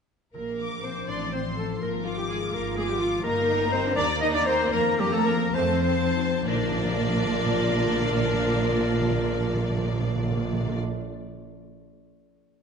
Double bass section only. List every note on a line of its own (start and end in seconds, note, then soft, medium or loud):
0.35 1.00 A#1 soft
1.08 1.73 A1 soft
1.81 2.45 G#1 soft
2.53 3.16 G#1 medium
3.24 3.88 G1 medium
3.97 4.64 D#2 medium
4.73 5.45 F2 medium
5.55 6.36 F2 medium
6.47 10.77 A#1 medium